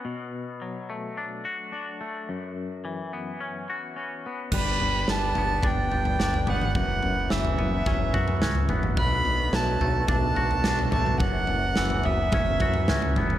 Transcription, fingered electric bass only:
X:1
M:4/4
L:1/8
Q:1/4=108
K:Bm
V:1 name="Fingered electric bass" clef=bass
z8 | z8 | G,,, G,,, G,,, G,,, G,,, G,,, G,,, G,,, | F,,, F,,, F,,, F,,, F,,, F,, C,, F,,, |
B,,, B,,, B,,, B,,, B,,, B,,, B,,, B,,, | F,,, F,,, F,,, F,,, F,,, F,, C,, F,,, |]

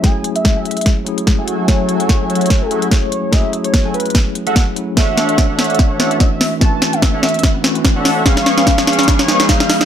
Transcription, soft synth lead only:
X:1
M:4/4
L:1/16
Q:"Swing 16ths" 1/4=146
K:F#m
V:1 name="Soft synth lead"
g2 z e2 z e2 z8 | c2 z c2 z c3 A2 z c4 | e2 z c2 z B2 z8 | e2 z e2 z e2 z c3 e3 z |
a3 e2 z e2 z8 | ^e2 z e2 z e2 z c2 z e3 z |]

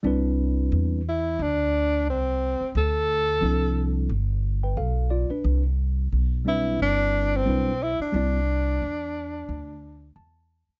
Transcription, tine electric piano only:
X:1
M:4/4
L:1/16
Q:"Swing 16ths" 1/4=89
K:C
V:1 name="Tine electric piano"
[G,CDEB]6 z8 z2 | z4 [F,CDEA]4 z3 [Bg] [Af]2 [Fd] [DB]- | [DB] z4 z [G,CDEB]6 [G,CDEB]2 z2 | [G,CDEd]2 z8 z2 a4 |]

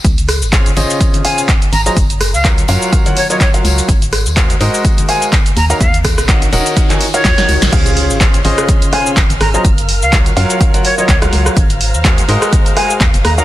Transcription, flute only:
X:1
M:4/4
L:1/16
Q:"Swing 16ths" 1/4=125
K:Db
V:1 name="Flute"
z8 z2 a z3 b b | z3 f z6 d d d z3 | z8 z2 a z3 b b | f z8 z2 d4 z |
z8 z2 a z3 b b | z3 f z6 d d d z3 | z8 z2 a z3 b b |]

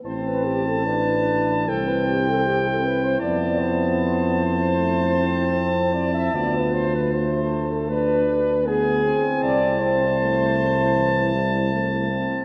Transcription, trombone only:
X:1
M:4/4
L:1/8
Q:1/4=78
K:Am
V:1 name="Trombone"
C2 D2 C4 | B,4 A, C3 | B, z A,2 D2 B, C- | C2 A,2 E, G, A, C |]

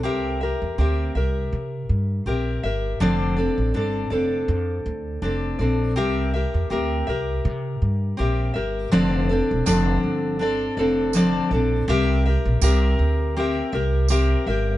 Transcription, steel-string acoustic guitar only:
X:1
M:4/4
L:1/8
Q:"Swing 16ths" 1/4=81
K:F
V:1 name="Steel-string acoustic guitar"
[CGBe] [GBe] [CGBe] [GBe]3 [CGBe] [GBe] | [D,F,CDAd] [CDAd] [CDAd] [CDAd]3 [CDAd] [CDAd] | [CGBe] [GBe] [CGBe] [GBe]3 [CGBe] [GBe] | [D,F,CDAd] [CDAd] [D,F,CDAd]2 [CDAd] [CDAd] [D,F,CDAd] [CDAd] |
[CGBe] [GBe] [CGBe]2 [CGBe] [GBe] [CGBe] [GBe] |]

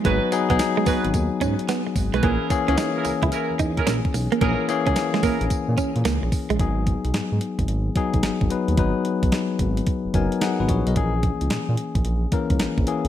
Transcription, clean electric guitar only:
X:1
M:4/4
L:1/16
Q:"Swing 16ths" 1/4=110
K:G#m
V:1 name="Clean electric guitar"
G, z2 B, z G, B, z3 C z B, z2 G, | A, z2 C D z2 E z2 D z C z2 A, | A, z2 C z G, A, z3 C z A, z2 G, | z16 |
z16 | z16 |]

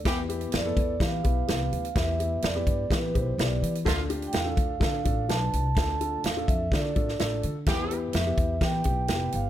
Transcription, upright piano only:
X:1
M:4/4
L:1/16
Q:1/4=126
K:Ephr
V:1 name="Upright piano"
[B,EG]2 [B,EG]2 z [B,EA]2 z [B,EG]2 [B,EG]2 [E,B,G]3 z | [B,EG]2 [B,EG]2 z [B,EG]2 z [B,EG]2 [B,EG]2 [B,EG]3 z | [DFA]2 [DFG]2 z [DFA]2 z [DFA]2 [DFA]2 [DFB]3 z | [DFA]2 [DFA]2 z [DFA]2 z [DFA]2 [DFA]2 [DFA]3 z |
[B,EG]2 [B,EG]2 z [B,EG]2 z [B,EG]2 [B,EG]2 [B,EFG]3 z |]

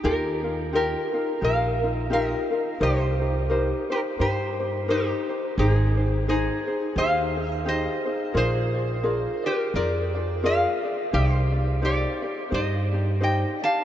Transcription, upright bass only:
X:1
M:4/4
L:1/8
Q:"Swing" 1/4=86
K:Eb
V:1 name="Upright bass" clef=bass
E,,4 B,,,4 | C,,4 G,,4 | A,,,4 E,,4 | B,,,4 F,,4 |
C,,4 G,,4 |]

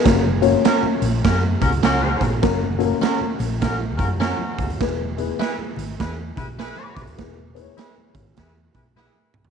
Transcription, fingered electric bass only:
X:1
M:4/4
L:1/16
Q:"Swing" 1/4=101
K:F#mix
V:1 name="Fingered electric bass" clef=bass
F,,,4 z2 A,,,2 F,,2 C,,2 C,,2 A,,,2 | F,,,4 z2 A,,,4 F,,3 z C,, D,,, | E,,,4 z2 G,,,2 E,,2 B,,,3 z B,,, D,,, | E,,,4 z2 G,,,2 E,,2 B,,,3 z B,,, z |]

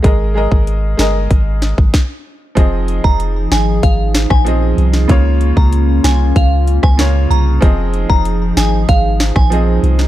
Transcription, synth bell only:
X:1
M:4/4
L:1/16
Q:1/4=95
K:Fm
V:1 name="Synth bell"
z16 | z3 b z2 a z f z2 a z4 | z3 b z2 a z f z2 a z2 b z | z3 b z2 a z f z2 a z4 |]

